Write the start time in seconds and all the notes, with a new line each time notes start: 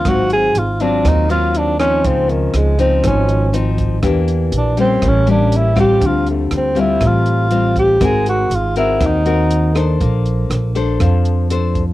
Already playing: F4
0.05 G#1 G#2 F#3 C4 F4 F#4, kick, cross-stick, closed hi-hat
0.30 G#4, closed hi-hat
0.55 G#1 F4, closed hi-hat
0.80 F#3 C4 D4 F4, closed hi-hat
1.05 D#2 D#3 D#4, kick, cross-stick, closed hi-hat
1.29 F#3 C4 F4, closed hi-hat
1.55 D4, closed hi-hat
1.79 F3 C4 C#4 D#4, cross-stick, closed hi-hat
2.04 C#2 C#3 C4, kick, closed hi-hat
2.29 D#3, closed hi-hat
2.54 C#2 G#3, cross-stick, closed hi-hat
2.79 F3 C4 D#4, closed hi-hat
3.04 G#1 G#2 C#4, kick, cross-stick, closed hi-hat
3.29 closed hi-hat
3.53 F3 C4 D#4, closed hi-hat
3.78 kick, closed hi-hat
4.03 E2 E3 A#3 D4 G4, kick, cross-stick, closed hi-hat
4.28 closed hi-hat
4.52 A#1, closed hi-hat
4.57 D4
4.77 G3 A#3 C4 C#4, closed hi-hat
5.02 A1 A2, kick, cross-stick, closed hi-hat
5.08 C#4
5.27 G3 A#3 C#4, closed hi-hat
5.31 D4
5.52 closed hi-hat
5.57 E4
5.76 G3 C4 F4, kick, cross-stick, closed hi-hat
5.80 G4
6.00 D2 D3, kick, closed hi-hat
6.07 F4
6.27 A3, closed hi-hat
6.51 D2, cross-stick, closed hi-hat
6.57 C4
6.75 G3 C4 F4, closed hi-hat
6.80 E4
7.01 A1 A2, kick, cross-stick, closed hi-hat
7.06 F4
7.26 closed hi-hat
7.51 G3 C4 F4, closed hi-hat
7.76 G4, kick, closed hi-hat
8.00 G#1 G#3 C4 F#4 A#4, kick, cross-stick, closed hi-hat
8.05 G#4
8.26 F#4, closed hi-hat
8.50 G#1, closed hi-hat
8.55 F4
8.76 C4 E4 F#4 A#4, closed hi-hat
9.00 D#2 D#3, kick, cross-stick, closed hi-hat
9.06 D#4
9.25 C4 F#4 A#4, closed hi-hat
9.51 closed hi-hat
9.75 D4 A4 C5, cross-stick, closed hi-hat
10.01 A#1 A#3, kick, closed hi-hat
10.26 closed hi-hat
10.50 A#1, cross-stick, closed hi-hat
10.75 D4 A4 C5, closed hi-hat
11.00 F2 F3, kick, cross-stick, closed hi-hat
11.25 closed hi-hat
11.50 D4 A4 C5, closed hi-hat
11.75 kick, closed hi-hat